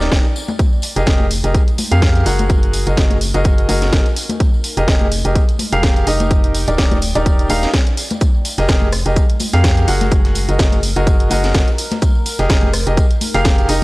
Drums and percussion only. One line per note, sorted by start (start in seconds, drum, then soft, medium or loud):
0.01 snare soft
0.01 tambourine soft
0.12 kick loud
0.12 snare loud
0.12 tambourine medium
0.25 tambourine soft
0.36 tambourine loud
0.48 tambourine soft
0.48 high conga medium
0.59 kick loud
0.59 closed hi-hat medium
0.59 tambourine soft
0.73 tambourine soft
0.82 open hi-hat loud
0.82 tambourine medium
0.96 closed hi-hat soft
0.96 tambourine soft
1.06 kick loud
1.06 snare loud
1.06 closed hi-hat medium
1.06 tambourine soft
1.20 tambourine soft
1.20 high conga medium
1.31 open hi-hat loud
1.31 tambourine medium
1.43 closed hi-hat soft
1.43 tambourine soft
1.55 kick loud
1.55 closed hi-hat medium
1.55 tambourine medium
1.68 closed hi-hat soft
1.68 tambourine soft
1.78 open hi-hat loud
1.78 tambourine medium
1.78 high conga medium
1.91 closed hi-hat medium
1.91 tambourine soft
2.02 kick loud
2.02 snare loud
2.02 closed hi-hat medium
2.02 tambourine soft
2.15 closed hi-hat soft
2.15 tambourine soft
2.26 open hi-hat loud
2.26 tambourine medium
2.38 closed hi-hat soft
2.38 tambourine soft
2.38 high conga medium
2.49 kick loud
2.49 closed hi-hat medium
2.49 tambourine soft
2.63 closed hi-hat soft
2.63 tambourine soft
2.73 open hi-hat medium
2.73 tambourine medium
2.87 closed hi-hat soft
2.87 tambourine soft
2.97 kick loud
2.97 snare loud
2.97 closed hi-hat medium
2.97 tambourine medium
3.10 closed hi-hat soft
3.10 tambourine soft
3.10 high conga medium
3.21 open hi-hat loud
3.21 tambourine medium
3.34 closed hi-hat soft
3.34 tambourine soft
3.44 kick loud
3.44 closed hi-hat medium
3.44 tambourine soft
3.58 closed hi-hat soft
3.58 tambourine soft
3.69 open hi-hat loud
3.69 tambourine medium
3.69 high conga medium
3.82 snare soft
3.82 closed hi-hat soft
3.82 tambourine soft
3.92 kick loud
3.92 snare loud
3.92 closed hi-hat medium
3.92 tambourine soft
4.06 closed hi-hat soft
4.06 tambourine soft
4.16 open hi-hat loud
4.16 tambourine medium
4.29 closed hi-hat soft
4.29 tambourine soft
4.29 high conga medium
4.40 kick loud
4.40 closed hi-hat medium
4.40 tambourine soft
4.54 tambourine soft
4.64 open hi-hat medium
4.64 tambourine medium
4.77 closed hi-hat medium
4.77 tambourine soft
4.88 kick loud
4.88 snare loud
4.88 closed hi-hat medium
4.88 tambourine soft
5.00 tambourine soft
5.00 high conga medium
5.12 open hi-hat loud
5.12 tambourine medium
5.24 closed hi-hat medium
5.24 tambourine soft
5.35 kick loud
5.35 closed hi-hat medium
5.35 tambourine medium
5.49 closed hi-hat soft
5.49 tambourine soft
5.59 open hi-hat loud
5.59 tambourine medium
5.59 high conga medium
5.72 closed hi-hat medium
5.72 tambourine soft
5.83 kick loud
5.83 snare loud
5.83 closed hi-hat medium
5.83 tambourine soft
5.96 closed hi-hat soft
5.96 tambourine soft
6.07 open hi-hat loud
6.07 tambourine medium
6.20 closed hi-hat medium
6.20 tambourine soft
6.20 high conga medium
6.31 kick loud
6.31 closed hi-hat medium
6.31 tambourine soft
6.43 closed hi-hat soft
6.43 tambourine soft
6.55 open hi-hat loud
6.55 tambourine medium
6.67 closed hi-hat medium
6.67 tambourine soft
6.78 kick loud
6.78 snare loud
6.78 closed hi-hat medium
6.78 tambourine medium
6.91 closed hi-hat soft
6.91 tambourine soft
6.91 high conga medium
7.02 open hi-hat loud
7.02 tambourine medium
7.15 closed hi-hat medium
7.15 tambourine soft
7.26 kick loud
7.26 closed hi-hat medium
7.26 tambourine soft
7.39 closed hi-hat soft
7.39 tambourine soft
7.49 open hi-hat loud
7.49 tambourine medium
7.49 high conga medium
7.63 snare soft
7.63 closed hi-hat medium
7.63 tambourine soft
7.74 kick loud
7.74 snare loud
7.74 closed hi-hat medium
7.87 closed hi-hat soft
7.87 tambourine soft
7.97 open hi-hat loud
7.97 tambourine medium
8.10 closed hi-hat medium
8.10 tambourine soft
8.10 high conga medium
8.21 kick loud
8.21 closed hi-hat medium
8.21 tambourine medium
8.21 shaker medium
8.34 tambourine soft
8.45 open hi-hat loud
8.45 tambourine medium
8.45 shaker medium
8.58 snare soft
8.58 closed hi-hat medium
8.58 tambourine soft
8.69 kick loud
8.69 snare loud
8.69 closed hi-hat medium
8.69 tambourine soft
8.69 shaker medium
8.82 tambourine soft
8.82 high conga medium
8.92 cross-stick medium
8.92 open hi-hat loud
8.92 tambourine medium
8.92 shaker medium
9.05 closed hi-hat medium
9.05 tambourine soft
9.16 kick loud
9.16 closed hi-hat medium
9.16 tambourine medium
9.16 shaker medium
9.29 closed hi-hat soft
9.29 tambourine soft
9.40 open hi-hat loud
9.40 tambourine medium
9.40 high conga medium
9.40 shaker medium
9.53 closed hi-hat medium
9.53 closed hi-hat soft
9.53 tambourine soft
9.64 kick loud
9.64 snare loud
9.64 closed hi-hat medium
9.64 tambourine medium
9.64 shaker medium
9.77 closed hi-hat soft
9.77 tambourine soft
9.88 open hi-hat loud
9.88 tambourine medium
9.88 shaker medium
10.01 snare soft
10.01 closed hi-hat medium
10.01 tambourine soft
10.01 high conga medium
10.11 kick loud
10.11 closed hi-hat medium
10.11 tambourine soft
10.11 shaker medium
10.25 snare soft
10.25 closed hi-hat soft
10.25 tambourine soft
10.35 open hi-hat loud
10.35 tambourine loud
10.35 shaker medium
10.49 closed hi-hat medium
10.49 tambourine soft
10.59 kick loud
10.59 snare loud
10.59 closed hi-hat medium
10.59 tambourine medium
10.59 shaker medium
10.72 closed hi-hat soft
10.72 tambourine soft
10.72 high conga medium
10.83 open hi-hat loud
10.83 tambourine medium
10.83 shaker medium
10.96 closed hi-hat medium
10.96 tambourine soft
11.07 kick loud
11.07 closed hi-hat medium
11.07 tambourine medium
11.07 shaker medium
11.20 closed hi-hat soft
11.20 tambourine soft
11.30 open hi-hat loud
11.30 tambourine loud
11.30 high conga medium
11.30 shaker medium
11.44 snare soft
11.44 closed hi-hat medium
11.44 tambourine soft
11.54 kick loud
11.54 snare loud
11.54 closed hi-hat medium
11.54 tambourine medium
11.54 shaker medium
11.68 closed hi-hat soft
11.68 tambourine soft
11.78 open hi-hat loud
11.78 tambourine medium
11.78 shaker medium
11.91 snare medium
11.91 closed hi-hat medium
11.91 tambourine soft
11.91 high conga medium
12.02 kick loud
12.02 closed hi-hat medium
12.02 tambourine medium
12.02 shaker medium
12.15 tambourine soft
12.26 open hi-hat loud
12.26 tambourine loud
12.26 shaker medium
12.39 snare soft
12.39 closed hi-hat soft
12.39 tambourine soft
12.50 kick loud
12.50 snare loud
12.50 closed hi-hat medium
12.50 tambourine medium
12.50 shaker medium
12.63 tambourine soft
12.63 high conga medium
12.73 cross-stick medium
12.73 open hi-hat loud
12.73 tambourine medium
12.73 shaker medium
12.87 closed hi-hat medium
12.87 tambourine soft
12.97 kick loud
12.97 closed hi-hat medium
12.97 tambourine medium
12.97 shaker medium
13.11 closed hi-hat soft
13.11 tambourine soft
13.21 open hi-hat loud
13.21 tambourine loud
13.21 high conga medium
13.21 shaker medium
13.34 closed hi-hat soft
13.34 tambourine soft
13.45 kick loud
13.45 snare loud
13.45 closed hi-hat medium
13.45 tambourine medium
13.45 shaker medium
13.58 closed hi-hat soft
13.58 tambourine soft
13.69 open hi-hat loud
13.69 tambourine loud
13.69 shaker medium